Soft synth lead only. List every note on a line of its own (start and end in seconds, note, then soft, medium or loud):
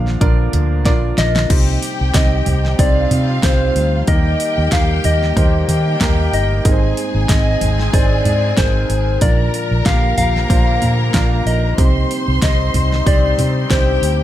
0.00 0.49 F5 medium
1.18 1.79 D#5 loud
2.16 2.76 D#5 medium
2.80 3.40 D5 loud
3.44 4.10 C5 medium
4.08 4.74 D#5 loud
4.73 5.06 F5 loud
5.05 6.33 D#5 loud
6.34 6.94 D#5 medium
7.30 7.90 D#5 medium
7.94 8.59 D5 loud
8.58 9.23 C5 loud
9.22 9.85 D5 loud
9.86 10.16 F5 loud
10.18 11.42 F5 loud
11.47 12.07 D#5 medium
12.43 13.09 D#5 medium
13.07 13.73 D5 loud
13.71 14.23 C5 medium